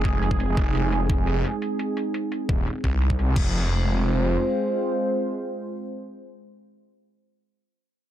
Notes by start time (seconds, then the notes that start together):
Already playing: F1 G#3 C4 D#4 G#4
0.05 kick, closed hi-hat
0.23 closed hi-hat
0.31 kick
0.40 closed hi-hat
0.57 F1, kick, closed hi-hat
0.75 closed hi-hat
0.92 closed hi-hat
1.10 kick, closed hi-hat
1.27 closed hi-hat
1.45 closed hi-hat
1.62 closed hi-hat
1.79 closed hi-hat
1.97 closed hi-hat
2.14 closed hi-hat
2.32 closed hi-hat
2.49 D#1, kick, closed hi-hat
2.67 closed hi-hat
2.84 C2, kick, closed hi-hat
3.01 closed hi-hat
3.10 kick
3.19 closed hi-hat
3.36 F1 G#3 C4 F4 C5, kick, crash